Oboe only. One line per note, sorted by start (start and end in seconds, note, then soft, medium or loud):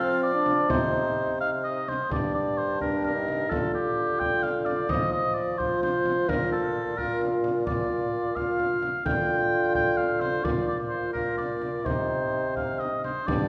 0.00 0.23 F5 loud
0.23 0.72 D5 medium
0.70 1.40 C5 medium
1.40 1.51 F5 medium
1.64 1.90 D#5 medium
1.89 2.11 C5 medium
2.12 2.34 D5 medium
2.34 2.59 D5 medium
2.57 2.81 C5 medium
2.81 3.04 A#4 medium
3.05 3.52 A#4 medium
3.50 3.74 A4 medium
3.74 4.21 G4 medium
4.20 4.44 G5 medium
4.43 4.67 F5 medium
4.65 4.92 D5 medium
4.90 5.12 D#5 medium
5.12 5.36 D#5 medium
5.34 5.60 D5 medium
5.58 5.82 C5 medium
5.83 6.31 C5 medium
6.29 6.52 A#4 medium
6.52 7.00 A4 medium
6.98 7.21 A#4 medium
7.67 8.37 D5 medium
8.36 9.05 F5 medium
9.06 9.74 G5 medium
9.75 9.99 G5 loud
9.97 10.22 F5 medium
10.21 10.45 C5 medium
10.44 10.67 D5 medium
10.67 10.78 D5 medium
10.89 11.13 C5 medium
11.13 11.37 A#4 medium
11.37 11.87 D5 medium
11.86 12.56 C5 medium
12.56 12.81 F5 medium
12.79 13.03 D#5 medium
13.04 13.28 C5 medium
13.27 13.48 D5 loud